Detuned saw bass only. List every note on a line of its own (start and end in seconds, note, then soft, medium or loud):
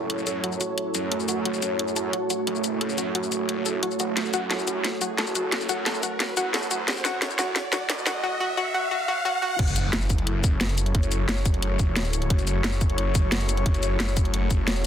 0.00 0.26 F#1 loud
0.27 0.59 F#2 medium
0.95 1.44 F#2 medium
1.46 1.61 F#1 loud
1.62 2.12 F#2 loud
2.47 2.97 F#1 loud
2.98 3.31 F#2 medium
3.32 3.81 F#1 medium
4.00 4.15 F#1 medium
4.17 4.32 F#1 medium
4.34 4.83 F#2 loud
5.18 5.68 F#1 loud
5.69 6.02 F#2 loud
6.37 6.87 F#2 loud
6.88 7.04 F#1 loud
7.05 7.54 F#2 loud
7.90 8.23 F#1 loud
9.59 10.93 F#1 medium
10.95 11.92 F#1 loud
11.92 12.29 E1 loud
12.30 13.65 F#1 loud
13.66 14.60 F#1 medium
14.60 14.87 F1 medium